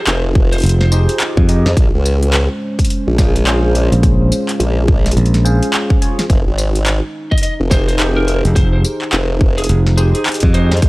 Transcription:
Already playing: D#4 F4 G4 G#4 C5, downlifter
0.07 F1 C5, clap, closed hi-hat
0.35 kick
0.52 C5, closed hi-hat
0.58 closed hi-hat
0.60 closed hi-hat
0.62 F1, closed hi-hat
0.64 closed hi-hat
0.66 closed hi-hat
0.69 closed hi-hat
0.81 C5, snare
0.92 D#4 G4 G#4 C5, tambourine
1.09 closed hi-hat
1.20 clap, closed hi-hat
1.37 F2, kick
1.49 D#4 G4 G#4 D#5, closed hi-hat
1.66 F2, snare
1.77 A#1 G#3 C#4 C5, kick, closed hi-hat
1.94 C#2
2.06 closed hi-hat, tambourine
2.23 closed hi-hat
2.34 clap, closed hi-hat
2.79 kick, closed hi-hat
2.85 closed hi-hat
2.90 closed hi-hat
3.07 A#1
3.18 C#4 F4 G#4 C5, kick, snare, tambourine
3.36 closed hi-hat
3.47 C#4 F4 G#4 C5, clap, closed hi-hat
3.75 closed hi-hat
3.92 A#1, closed hi-hat
4.03 kick, closed hi-hat
4.32 closed hi-hat, tambourine
4.49 clap, closed hi-hat
4.60 A#1, closed hi-hat
4.88 kick
5.06 snare, closed hi-hat
5.11 closed hi-hat
5.17 A#1, closed hi-hat
5.26 closed hi-hat
5.34 snare, closed hi-hat
5.45 C#4 F4 G#4 C5, tambourine
5.63 closed hi-hat
5.74 clap, closed hi-hat
5.90 kick
6.02 C#4 F4 G#4 C#5, closed hi-hat
6.19 snare, closed hi-hat
6.29 F1 D#4, kick, closed hi-hat
6.47 G#1
6.58 closed hi-hat, tambourine
6.75 closed hi-hat
6.86 clap, closed hi-hat
7.31 D#5, kick
7.38 closed hi-hat
7.43 D#5, closed hi-hat
7.60 F1
7.71 D#4 G4 G#4 C5, kick, snare, tambourine
7.88 C5, closed hi-hat
7.99 D#4 G4 G#4 C5, clap, closed hi-hat
8.16 A#4
8.27 A#4, closed hi-hat
8.45 F1, closed hi-hat
8.55 C5, kick, closed hi-hat
8.73 C5
8.84 closed hi-hat, tambourine
9.02 clap
9.13 F1, clap, closed hi-hat
9.41 kick
9.58 G#4, closed hi-hat
9.64 closed hi-hat
9.69 F1, closed hi-hat
9.87 snare
9.97 D#4 G4 G#4 C5, tambourine
10.15 G#4, closed hi-hat
10.26 clap, closed hi-hat
10.29 closed hi-hat
10.32 closed hi-hat
10.34 closed hi-hat
10.40 F2, kick, closed hi-hat
10.54 D#4 G4 G#4 C5 D#5, closed hi-hat
10.71 F2, snare, closed hi-hat
10.77 closed hi-hat
10.82 A#1 C#4, kick, closed hi-hat

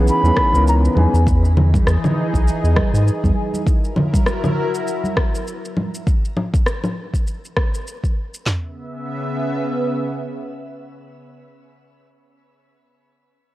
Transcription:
Already playing: B1 C#3 E3 B3 C#4 D#4 G#4
0.08 B5, shaker
0.23 E2 E3 B3 C#4 D#4 G#4, high conga, shaker
0.36 kick, cross-stick
0.52 C#2 E3 B3 C#4 D#4 A#4, shaker
0.67 A#5, shaker
0.85 shaker
0.95 E2 E3 B3 C#4 D#4 G#4 G#5, high conga, low conga
1.14 E2, shaker
1.27 E3 D#4 G#4, kick, shaker
1.45 shaker
1.57 low conga
1.74 kick, high conga, shaker
1.87 E2, cross-stick, shaker
2.04 low conga, shaker
2.34 B1, kick, shaker
2.48 shaker
2.64 E2, shaker
2.76 kick, cross-stick, high conga
2.94 G#2, shaker
3.08 shaker
3.24 E2, kick, high conga, shaker
3.54 high conga, shaker
3.67 F#3 E4 A#4, kick, shaker
3.85 shaker
3.96 low conga
4.14 kick, high conga, shaker
4.27 cross-stick, shaker
4.44 low conga, shaker
4.75 shaker
4.88 shaker
5.04 high conga, shaker
5.17 kick, cross-stick
5.35 shaker
5.48 shaker
5.65 shaker
5.77 high conga, low conga
5.94 shaker
6.07 kick, shaker
6.25 shaker
6.37 low conga
6.54 kick, shaker
6.67 cross-stick, shaker
6.84 low conga, shaker
7.14 kick, shaker
7.27 shaker
7.45 shaker
7.57 kick, cross-stick
7.74 shaker
7.88 shaker
8.04 kick, shaker
8.34 shaker
8.45 C#3 B3 E5, snare, clap, floor tom

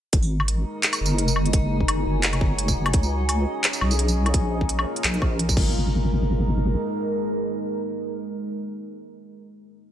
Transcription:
0.13 G#1 G#3 D#4 A#4, kick, closed hi-hat
0.23 tambourine
0.40 low woodblock
0.48 closed hi-hat
0.83 clap, closed hi-hat
0.93 closed hi-hat, tambourine, low woodblock
1.01 F#1
1.06 tambourine
1.18 closed hi-hat
1.28 tambourine
1.36 low woodblock
1.46 closed hi-hat
1.53 F#1 F#4 C#5 G#5, kick, closed hi-hat
1.81 kick
1.88 closed hi-hat, low woodblock
2.06 F#1
2.23 clap, closed hi-hat
2.33 closed hi-hat, low woodblock
2.41 kick
2.59 closed hi-hat
2.68 kick, tambourine
2.76 F#1
2.86 closed hi-hat, low woodblock
2.93 C#2 C#4 G#4 D#5, kick, closed hi-hat
3.03 tambourine
3.29 closed hi-hat, low woodblock
3.64 clap, closed hi-hat
3.73 closed hi-hat, tambourine
3.81 B1, low woodblock
3.91 tambourine
3.99 closed hi-hat
4.08 tambourine
4.26 closed hi-hat, low woodblock
4.34 A#1 A#3 F4 A#4, kick, closed hi-hat
4.61 kick
4.69 closed hi-hat
4.79 low woodblock
4.96 closed hi-hat
5.04 A#1, clap, closed hi-hat
5.14 closed hi-hat
5.22 kick, low woodblock
5.39 closed hi-hat
5.49 kick, tambourine
5.57 G#1 G#3 D#4 A#4, kick, crash

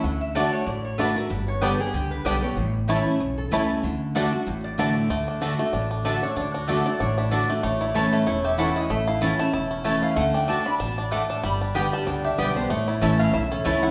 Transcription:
0.03 D2 D3 F#5
0.21 E5
0.35 D3 A3 D4 F#4 D5 A5
0.53 C#5
0.66 A1 A2 D5
0.85 C#5
0.98 D3 A3 D4 F#4 B4 D5 A5
1.16 D4 F#4 A#4
1.30 G1 G2 B4
1.48 C#5
1.61 D3 G3 B3 D4 G4 A4 D5 G5
1.79 B3 G4 G#4
1.93 C#2 D3 G4
2.11 B4
2.25 B1 D3 G3 B3 D4 G4 A4 D5 G5
2.42 B3 G4 C#5
2.57 A1 A2
2.88 E3 A3 C#4 E4 C#5 A5
3.06 C#4 E4
3.20 B1 E2
3.38 A4
3.51 C#2 E3 A3 C#4 E4 C#5 A5
3.83 D2 D3
4.15 D3 A3 D4 F#4 D5 F#5 A5
4.32 D4 F#4
4.47 A1 A2
4.64 D5
4.78 D3 A3 D4 F#4 D5 A5
5.10 D2 D3 A3
5.28 D4
5.41 D3 A3 D4 F#4 D5 A5
5.59 A3 D4 F#4
5.73 A1 A2 D4
5.91 D4
6.04 D3 A3 D4 F#4 D5 E5 A5
6.22 D4 F#4 C#5
6.36 D2 D3 D4 D5
6.54 D4 F#4
6.68 D3 A3 D4 F#4 A4 D5 A5
6.85 D4 F#4 D5
7.00 A1 A2 D4 C#5
7.18 D4 E4
7.31 D3 A3 D4 F#4 A4 D5 A5
7.49 A3 D4 F#4 D5
7.63 A1 A2 A3 C#5
7.81 E4 D5
7.94 E3 A3 C#4 E4 C#5 A5
8.12 A3 B4
8.26 E1 E2 E4 C#5
8.44 G4 E5
8.58 E3 A3 C#4 E4 C#5 F#5 A5
8.76 E4 D#5
8.90 A1 A2 A3 E5
9.07 E4 F5
9.21 E3 A3 C#4 E4 C#5 F#5 A5
9.39 A3 C#4 E4 A5
9.53 E1 E2 E4
9.71 C#4
9.84 E3 A3 C#4 E4 C#5 A5
10.02 E4 F5
10.16 D2 D3 A3 F#5
10.34 D4 G5
10.47 D3 A3 D4 F#4 D5 A5
10.66 D4 F#4 B5
10.80 A1 B2 D4 A5
10.98 D4 D5
11.11 A2 A3 F#4 D5 F#5 A5
11.30 D4 A5
11.43 G1 G2 G3 B5
11.61 D4
11.74 D3 G3 B3 G4 D5 G5
11.93 G3 A5
12.07 C#2 D3 D4 G5
12.25 G4 E5
12.38 B1 D3 G3 B3 G4 D5 G5
12.56 B3 D4 G4 C5
12.70 A1 A2 A3 C#5
12.88 E4 D5
13.01 A1 E3 A3 C#4 E4 C#5 E5 A5
13.19 A3 F5
13.33 B1 E2 E4 E5
13.52 C#4 A4
13.64 C#2 E3 A3 C#4 E4 C#5 A5
13.83 C#4 E4 F#5

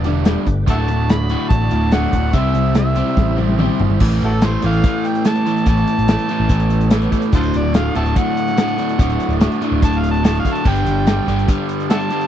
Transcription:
Already playing: E1 A3 D4 G4 B4
0.04 G2 D3 G3 B3 D4 G4, closed hi-hat
0.25 G2 D3 G3, snare, closed hi-hat
0.46 G1 G2 D3, kick, closed hi-hat
0.67 D1 D2 A2 D3 A3 A#3 D#4 F#4 G4 D#5 E5 F#5 A5, kick, closed hi-hat
0.81 A3 D4 F#4 D5
0.88 D2 A2, closed hi-hat
1.09 D2 A2 B5, snare, closed hi-hat
1.29 D2 A2 D3 A3 F#4, closed hi-hat
1.49 A1 D2 A2 A5, kick, closed hi-hat
1.70 D1 D2 A2 D3, closed hi-hat
1.92 D2 A2 D3 A3 F#4 F#5, snare, closed hi-hat
2.13 D1 D2 A2, kick, closed hi-hat
2.33 C2 C3 G3 C4 E4 G4 E5, kick, closed hi-hat
2.38 C5
2.55 C3 G3, closed hi-hat
2.75 C3 G3 E5, snare, closed hi-hat
2.96 C3 G3 C4 E4 G4 C5, closed hi-hat
3.07 snare
3.17 A1 C3 G3, kick, snare
3.37 C3 G3 C4, high tom
3.48 high tom
3.59 C3 G3 C4 E4 G4 C5, mid tom
3.80 G1 C3 G3, floor tom
3.90 floor tom
4.00 A1 A2 E3 A3 B3 A4 C#5, kick, crash
4.12 closed hi-hat
4.22 A1 E4 F#4 A4, closed hi-hat
4.41 A2 E3 A3 C5, snare, closed hi-hat
4.62 A1 A2 E3 A3 F5, closed hi-hat
4.73 closed hi-hat
4.84 A2 E3 A3, kick, closed hi-hat
5.05 G5, closed hi-hat
5.15 closed hi-hat
5.25 A2 E3 A3 A5, snare, closed hi-hat
5.35 closed hi-hat
5.46 A2 E3 A3, closed hi-hat
5.57 closed hi-hat
5.66 A1 A2 E3 A3 A5, kick, closed hi-hat
5.77 closed hi-hat
5.88 closed hi-hat
5.99 A1, closed hi-hat
6.08 A2 E3 A3, snare, closed hi-hat
6.19 closed hi-hat
6.29 A2 E3 A3, closed hi-hat
6.40 A1
6.49 A2 E3 A3, kick, closed hi-hat
6.60 closed hi-hat
6.70 closed hi-hat
6.81 closed hi-hat
6.90 A2 E3 A3, snare, closed hi-hat
7.02 closed hi-hat
7.11 A2 E3 A3, kick, closed hi-hat
7.22 closed hi-hat
7.31 D1 D2 A2 D3 A3 E4 F4 F#4 A4 C5 D5, kick, closed hi-hat
7.43 closed hi-hat
7.54 D1 D5, closed hi-hat
7.73 D2 A2 D3 F5, snare, closed hi-hat
7.95 D1 D2 A2 D3 E5 F#5 A5, closed hi-hat
8.06 closed hi-hat
8.16 D2 A2 D3 F#5, kick, closed hi-hat
8.37 closed hi-hat
8.48 snare, closed hi-hat
8.56 D2 A2 D3, snare, closed hi-hat
8.68 closed hi-hat
8.77 D2 A2 D3, closed hi-hat
8.89 closed hi-hat
8.98 D1 D2 A2 D3, kick, closed hi-hat
9.10 closed hi-hat
9.20 closed hi-hat
9.29 D1, closed hi-hat
9.39 D2 A2 D3, snare, closed hi-hat
9.52 closed hi-hat
9.60 D2 A2 D3, closed hi-hat
9.72 D1
9.81 D2 A2 D3 A5, kick, closed hi-hat
9.93 closed hi-hat
9.99 F5
10.04 closed hi-hat
10.11 A5, closed hi-hat
10.23 D2 A2 D3 A5, snare, closed hi-hat
10.39 F5
10.44 D2 A2 D3, kick, closed hi-hat
10.54 A5, closed hi-hat
10.65 G1 G2 D3 G3 B3 G4 A4 D5 G5, kick, crash
10.76 closed hi-hat
10.85 G1, closed hi-hat
11.07 G2 D3 G3, snare, closed hi-hat
11.28 G1 G2 D3 G3, closed hi-hat
11.39 closed hi-hat
11.48 G2 D3 G3, kick, closed hi-hat
11.69 closed hi-hat
11.80 snare, closed hi-hat
11.90 G2 D3 G3 E5 F#5 A5, snare, closed hi-hat
12.00 closed hi-hat
12.10 G2 D3 G3, closed hi-hat
12.21 closed hi-hat

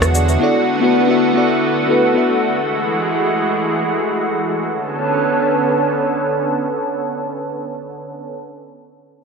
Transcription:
Already playing: E2 D3 G#3 B3 D4 F#4 G#4 C#5 D5, downlifter
0.02 B4 E5, cross-stick, shaker
0.15 G#4 D5, shaker
0.28 B4 E5, shaker
0.40 A3 B3 E4 F#4 A4 D5
0.80 B3 E4 F#4 A4 B4
1.07 B3 E4 F#4 A4 E5
1.34 B3 E4 F#4 A4 D5
1.87 B3 E4 F#4 A4 B4
2.14 B3 E4 F#4 A4 E5
2.56 E3 G#3
4.70 D3 B3 C#4 A4

